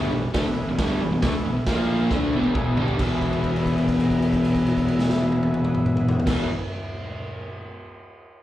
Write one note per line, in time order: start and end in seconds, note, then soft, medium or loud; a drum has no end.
0.00 0.11 G1 medium
0.00 0.11 G2 medium
0.00 0.12 D3 loud
0.00 0.12 G3 loud
0.00 0.23 G#4 loud
0.00 0.24 B4 medium
0.00 0.24 C#5 loud
0.11 0.22 E1 medium
0.11 0.22 E2 medium
0.11 0.24 B2 medium
0.23 muted picked electric bass stroke soft
0.23 muted overdriven electric guitar stroke medium
0.34 0.45 D2 loud
0.34 0.45 D3 medium
0.34 0.45 A3 loud
0.34 0.68 G#4 medium
0.34 0.68 B4 medium
0.34 0.68 E5 loud
0.34 kick loud
0.34 snare loud
0.34 open hi-hat medium
0.46 0.66 E1 medium
0.46 0.64 E2 medium
0.46 0.64 B2 medium
0.67 0.78 E1 medium
0.67 0.78 E2 medium
0.67 0.79 B2 medium
0.77 0.99 G1 loud
0.77 1.00 G2 loud
0.77 1.01 D3 loud
0.77 1.01 G3 loud
0.77 1.10 G#4 medium
0.77 1.11 B4 medium
0.77 1.11 C#5 loud
0.77 kick loud
0.77 snare loud
0.77 open hi-hat medium
1.00 1.11 E1 medium
1.00 1.11 E2 medium
1.00 1.11 B2 medium
1.12 1.22 E1 medium
1.12 1.23 E2 medium
1.12 1.22 B2 medium
1.22 1.33 D2 loud
1.22 1.33 D3 medium
1.22 1.34 A3 loud
1.22 1.56 G#4 medium
1.22 1.56 B4 medium
1.22 1.56 E5 loud
1.22 kick loud
1.22 snare loud
1.22 open hi-hat medium
1.34 muted overdriven electric guitar stroke medium
1.34 muted picked electric bass stroke soft
1.45 1.55 E1 medium
1.45 1.56 E2 medium
1.45 1.57 B2 medium
1.56 muted picked electric bass stroke soft
1.56 muted overdriven electric guitar stroke medium
1.67 2.08 A#1 medium
1.67 2.11 A#2 loud
1.67 2.12 F3 loud
1.67 2.00 F4 medium
1.67 2.00 A#4 medium
1.67 2.00 F5 loud
1.67 kick loud
1.67 snare loud
1.67 open hi-hat medium
1.71 2.13 A#3 loud
2.10 2.32 D2 medium
2.10 2.33 D3 loud
2.10 2.34 A3 loud
2.10 2.34 D4 loud
2.10 2.43 G#4 medium
2.10 2.43 B4 medium
2.10 2.44 E5 loud
2.10 kick loud
2.10 snare medium
2.33 2.74 E1 loud
2.33 2.77 E2 medium
2.33 2.79 B2 loud
2.33 2.54 B5 medium
2.33 high tom medium
2.37 2.79 E3 loud
2.44 high tom medium
2.53 2.87 G#4 medium
2.53 2.87 B4 medium
2.53 2.88 E5 loud
2.53 2.75 G#5 medium
2.53 kick loud
2.53 mid tom medium
2.76 2.98 G1 loud
2.76 2.98 G2 loud
2.76 3.00 D3 loud
2.76 2.97 C#5 medium
2.76 floor tom loud
2.80 3.00 G3 medium
2.88 floor tom medium
2.99 6.18 E1 loud
2.99 6.26 E2 loud
2.99 6.28 B2 medium
2.99 6.18 G#4 medium
2.99 6.18 B4 medium
2.99 6.18 E5 loud
2.99 kick loud
2.99 crash medium
3.03 6.30 E3 loud
3.21 kick medium
3.21 crash soft
3.33 crash soft
3.44 kick medium
3.44 crash soft
3.56 crash soft
3.66 kick medium
3.66 crash soft
3.78 crash soft
3.88 kick medium
3.88 crash medium
4.00 crash medium
4.10 kick medium
4.10 crash soft
4.22 crash medium
4.33 kick medium
4.33 crash medium
4.45 crash medium
4.55 kick medium
4.55 crash medium
4.67 crash medium
4.77 kick medium
4.77 crash medium
4.88 crash medium
4.99 snare medium
5.10 snare loud
5.21 high tom medium
5.32 high tom loud
5.43 high tom loud
5.54 mid tom loud
5.65 mid tom loud
5.75 mid tom loud
5.86 mid tom loud
5.97 mid tom loud
6.09 floor tom loud
6.20 floor tom loud
6.25 6.46 E1 loud
6.25 6.47 E2 medium
6.25 6.48 B2 medium
6.25 6.45 G#4 medium
6.25 6.45 B4 medium
6.25 6.45 E5 medium
6.25 kick loud
6.25 snare loud
6.25 crash loud
6.30 6.49 E3 loud